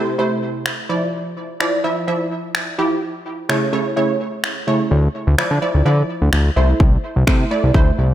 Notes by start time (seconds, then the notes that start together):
Already playing: C3 A3 E4 C5
0.18 C3 A3 E4 C5
0.66 finger snap
0.89 F3 E4 D5
1.60 F3 E4 D5, finger snap
1.84 F3 E4 E5
2.07 F3 E4 E5
2.55 finger snap
2.78 F3 E4 G4
3.49 C#3 A3 E4 C#5, finger snap
3.73 C#3 A3 E4 C#5
3.96 C#3 A3 E4 C#5
4.44 finger snap
4.67 C#3 A3 E4 C#5
4.91 D2
5.27 D2
5.38 F3 E4 D5, finger snap
5.51 D3
5.62 F3 E4 D5
5.74 D2
5.85 D3 F3 E4 D5
6.22 D2
6.33 D2, finger snap
6.56 C2 A3 E4 C5
6.80 C2, kick
7.16 C2
7.27 C3 A3 E4 C5, finger snap, kick
7.51 A3 E4 D5
7.63 C2
7.74 D2 A3 E4 C5, kick
7.98 C2